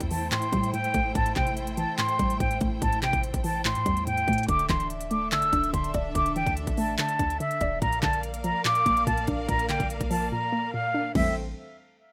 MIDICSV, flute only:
0, 0, Header, 1, 2, 480
1, 0, Start_track
1, 0, Tempo, 416667
1, 1327, Time_signature, 4, 2, 24, 8
1, 13967, End_track
2, 0, Start_track
2, 0, Title_t, "Flute"
2, 0, Program_c, 0, 73
2, 125, Note_on_c, 0, 81, 73
2, 330, Note_off_c, 0, 81, 0
2, 365, Note_on_c, 0, 84, 84
2, 817, Note_off_c, 0, 84, 0
2, 846, Note_on_c, 0, 79, 96
2, 1297, Note_off_c, 0, 79, 0
2, 1326, Note_on_c, 0, 81, 92
2, 1530, Note_off_c, 0, 81, 0
2, 1567, Note_on_c, 0, 79, 83
2, 1771, Note_off_c, 0, 79, 0
2, 2045, Note_on_c, 0, 81, 93
2, 2249, Note_off_c, 0, 81, 0
2, 2285, Note_on_c, 0, 84, 89
2, 2737, Note_off_c, 0, 84, 0
2, 2766, Note_on_c, 0, 79, 81
2, 2970, Note_off_c, 0, 79, 0
2, 3249, Note_on_c, 0, 81, 89
2, 3452, Note_off_c, 0, 81, 0
2, 3486, Note_on_c, 0, 79, 90
2, 3690, Note_off_c, 0, 79, 0
2, 3967, Note_on_c, 0, 81, 81
2, 4171, Note_off_c, 0, 81, 0
2, 4207, Note_on_c, 0, 84, 89
2, 4658, Note_off_c, 0, 84, 0
2, 4689, Note_on_c, 0, 79, 99
2, 5139, Note_off_c, 0, 79, 0
2, 5168, Note_on_c, 0, 86, 98
2, 5372, Note_off_c, 0, 86, 0
2, 5409, Note_on_c, 0, 84, 82
2, 5612, Note_off_c, 0, 84, 0
2, 5888, Note_on_c, 0, 86, 84
2, 6091, Note_off_c, 0, 86, 0
2, 6128, Note_on_c, 0, 88, 87
2, 6578, Note_off_c, 0, 88, 0
2, 6609, Note_on_c, 0, 84, 82
2, 6812, Note_off_c, 0, 84, 0
2, 7088, Note_on_c, 0, 86, 99
2, 7291, Note_off_c, 0, 86, 0
2, 7328, Note_on_c, 0, 79, 85
2, 7531, Note_off_c, 0, 79, 0
2, 7807, Note_on_c, 0, 81, 80
2, 8011, Note_off_c, 0, 81, 0
2, 8047, Note_on_c, 0, 81, 80
2, 8498, Note_off_c, 0, 81, 0
2, 8528, Note_on_c, 0, 76, 95
2, 8978, Note_off_c, 0, 76, 0
2, 9006, Note_on_c, 0, 82, 91
2, 9210, Note_off_c, 0, 82, 0
2, 9245, Note_on_c, 0, 81, 92
2, 9450, Note_off_c, 0, 81, 0
2, 9725, Note_on_c, 0, 82, 88
2, 9930, Note_off_c, 0, 82, 0
2, 9968, Note_on_c, 0, 86, 98
2, 10419, Note_off_c, 0, 86, 0
2, 10448, Note_on_c, 0, 81, 90
2, 10651, Note_off_c, 0, 81, 0
2, 10928, Note_on_c, 0, 82, 100
2, 11131, Note_off_c, 0, 82, 0
2, 11168, Note_on_c, 0, 79, 81
2, 11371, Note_off_c, 0, 79, 0
2, 11646, Note_on_c, 0, 81, 81
2, 11850, Note_off_c, 0, 81, 0
2, 11887, Note_on_c, 0, 82, 88
2, 12338, Note_off_c, 0, 82, 0
2, 12368, Note_on_c, 0, 77, 97
2, 12819, Note_off_c, 0, 77, 0
2, 12848, Note_on_c, 0, 76, 92
2, 13071, Note_off_c, 0, 76, 0
2, 13967, End_track
0, 0, End_of_file